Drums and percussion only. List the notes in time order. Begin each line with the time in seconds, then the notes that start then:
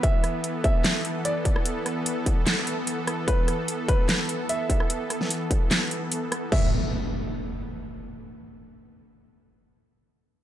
0.03 kick, closed hi-hat
0.24 cross-stick, closed hi-hat
0.44 closed hi-hat
0.64 kick, closed hi-hat
0.84 snare, clap, closed hi-hat
1.05 closed hi-hat
1.25 closed hi-hat
1.45 kick, closed hi-hat
1.56 cross-stick
1.66 closed hi-hat
1.86 cross-stick, closed hi-hat
2.06 closed hi-hat
2.26 kick, closed hi-hat
2.47 snare, clap, closed hi-hat
2.67 closed hi-hat
2.87 closed hi-hat
3.07 cross-stick, closed hi-hat
3.28 kick, closed hi-hat
3.48 cross-stick, closed hi-hat
3.68 closed hi-hat
3.88 kick, closed hi-hat
4.09 snare, clap, closed hi-hat
4.29 closed hi-hat
4.49 closed hi-hat
4.70 kick, closed hi-hat
4.80 cross-stick
4.90 closed hi-hat
5.10 cross-stick, closed hi-hat
5.21 snare
5.30 closed hi-hat
5.51 kick, closed hi-hat
5.71 snare, clap, closed hi-hat
5.91 closed hi-hat
6.12 closed hi-hat
6.32 cross-stick, closed hi-hat
6.52 kick, crash